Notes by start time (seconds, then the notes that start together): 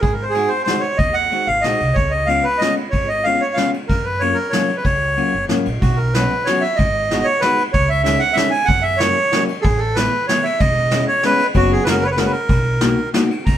0.01 G#2 G#4, kick, ride
0.13 A#4
0.22 C5
0.30 G#4
0.34 G#3 C4 D#4 F#4, ride
0.48 C5
0.64 G#3 C4 D#4 F#4 C5, snare, ride
0.80 C#5, ride
0.97 D#2 D#5, kick, ride
1.14 F#5
1.32 G#3 C4 D#4 F#4, ride
1.47 G#1 F5
1.61 A#1 G#3 C4 D#4 F#4 D#5, snare, ride
1.80 C2, ride
1.94 C#2 C#5, kick, ride
2.11 D#5
2.26 G#3 B3 C#4 F4 F5, ride
2.44 B4
2.58 G#3 B3 C#4 F4 D#5, snare, ride
2.77 ride
2.90 G#1 C#5, kick, ride
3.08 D#5
3.24 G#3 B3 C#4 F4 F5, ride
3.41 C#5
3.54 G#3 B3 C#4 F4 F5, snare, ride
3.74 ride
3.88 F#2 A#4, kick, ride
4.05 B4
4.19 F#3 A#3 C#4 F4 C#5, ride
4.34 A#4
4.50 F#3 A#3 C#4 C#5, snare, ride
4.54 F4
4.69 ride
4.76 B4
4.85 C#2 C#5, kick, ride
5.17 F#3 A#3 C#4 F4, ride
5.34 F#1
5.48 G#1 F#3 A#3 C#4 F4, snare, ride
5.65 A#1, ride
5.81 B1 F#4, kick, ride
5.96 A#4
6.13 F#3 B3 C#4 F#4 B4, snare, ride
6.45 F#3 B3 C#4 F#4 C#5, snare, ride
6.61 E5, ride
6.76 G#1 D#5, kick, ride
7.11 G#3 B3 D#4 F#4, snare, ride
7.24 C#5
7.40 G#3 B3 D#4 F#4 B4, snare, ride
7.58 ride
7.73 C#2 C#5, kick, ride
7.89 E5
8.03 G#3 C#4 D#4 E4 E5, snare, ride
8.19 F#5
8.33 G#3 C#4 D#4 E4 E5
8.37 snare, ride
8.50 G#5, ride
8.65 F#2 F#5, kick
8.69 ride
8.82 E5
8.97 F#3 A#3 C#4 C#5, snare, ride
9.01 E4
9.32 F#3 A#3 C#4 E4, snare, ride
9.48 ride
9.61 A1 G#4 A4, kick, ride
9.78 A4
9.95 E3 A3 B3 E4 B4, snare, ride
10.28 E3 A3 B3 E4 C#5, snare, ride
10.43 E5, ride
10.60 E1 D#5, kick, ride
10.91 G#3 B3 C#4 E4, snare, ride
11.08 C#5
11.23 G#3 B3 C#4 E4 B4, snare, ride
11.39 ride
11.54 F#1 F#3 B3 C#4 F#4, kick, ride
11.72 G#4
11.84 F#1 G#3 A#3 C#4 F#4 B4, snare, ride
11.89 A#4
12.03 B4 C#5
12.11 B4
12.17 G#3 A#3 C#4 F#4 A#4, snare, ride
12.25 B4
12.31 A#4, ride
12.49 B1, kick, ride
12.81 A#3 B3 D#4 F#4, snare, ride
13.14 A#3 B3 D#4 F#4, snare, ride
13.31 ride
13.46 F#1 A#5, kick, ride